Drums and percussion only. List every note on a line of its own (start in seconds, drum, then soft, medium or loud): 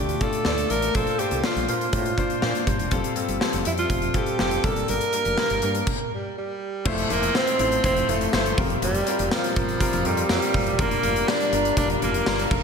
0.09 closed hi-hat medium
0.21 kick medium
0.21 closed hi-hat medium
0.33 closed hi-hat soft
0.45 snare medium
0.58 closed hi-hat soft
0.70 closed hi-hat medium
0.82 closed hi-hat medium
0.95 kick loud
0.95 closed hi-hat medium
1.07 closed hi-hat soft
1.19 closed hi-hat medium
1.31 closed hi-hat soft
1.44 snare loud
1.56 closed hi-hat medium
1.68 closed hi-hat medium
1.81 closed hi-hat soft
1.93 kick medium
1.93 closed hi-hat loud
2.05 closed hi-hat medium
2.18 kick medium
2.18 closed hi-hat medium
2.30 closed hi-hat soft
2.42 snare loud
2.55 closed hi-hat medium
2.67 kick medium
2.67 closed hi-hat medium
2.79 closed hi-hat medium
2.91 kick loud
2.91 closed hi-hat medium
3.04 closed hi-hat medium
3.16 closed hi-hat medium
3.28 closed hi-hat soft
3.41 snare loud
3.53 closed hi-hat medium
3.65 closed hi-hat medium
3.77 closed hi-hat soft
3.90 kick loud
3.90 closed hi-hat loud
4.02 closed hi-hat soft
4.14 kick medium
4.14 closed hi-hat medium
4.26 closed hi-hat soft
4.39 snare loud
4.51 closed hi-hat soft
4.64 kick loud
4.64 closed hi-hat medium
4.76 closed hi-hat soft
4.88 closed hi-hat medium
5.01 closed hi-hat medium
5.13 closed hi-hat medium
5.25 closed hi-hat soft
5.38 snare loud
5.50 closed hi-hat medium
5.62 closed hi-hat medium
5.75 closed hi-hat soft
5.87 kick loud
5.87 crash medium
6.85 kick loud
6.85 crash loud
6.98 closed hi-hat medium
7.10 closed hi-hat medium
7.23 closed hi-hat medium
7.35 snare loud
7.35 tambourine medium
7.47 closed hi-hat medium
7.59 closed hi-hat medium
7.72 closed hi-hat soft
7.84 kick loud
7.84 closed hi-hat loud
7.96 closed hi-hat medium
8.09 closed hi-hat medium
8.21 closed hi-hat medium
8.33 snare loud
8.33 tambourine medium
8.46 closed hi-hat medium
8.58 kick loud
8.58 open hi-hat medium
8.70 closed hi-hat medium
8.82 closed hi-hat medium
8.94 closed hi-hat medium
9.07 closed hi-hat medium
9.19 closed hi-hat medium
9.31 snare loud
9.31 tambourine medium
9.44 closed hi-hat medium
9.56 kick loud
9.56 closed hi-hat medium
9.69 closed hi-hat soft
9.80 kick loud
9.80 closed hi-hat loud
9.93 closed hi-hat medium
10.05 closed hi-hat medium
10.17 closed hi-hat medium
10.29 snare loud
10.29 tambourine medium
10.42 closed hi-hat medium
10.54 kick medium
10.54 open hi-hat medium
10.67 closed hi-hat medium
10.79 kick loud
10.79 closed hi-hat medium
10.91 closed hi-hat medium
11.03 closed hi-hat medium
11.16 closed hi-hat medium
11.28 snare loud
11.28 tambourine medium
11.41 closed hi-hat medium
11.53 closed hi-hat medium
11.65 closed hi-hat soft
11.77 kick loud
11.77 closed hi-hat loud
11.90 closed hi-hat medium
12.02 closed hi-hat medium
12.14 closed hi-hat medium
12.26 snare loud
12.26 tambourine medium
12.39 closed hi-hat medium
12.51 kick loud
12.51 crash medium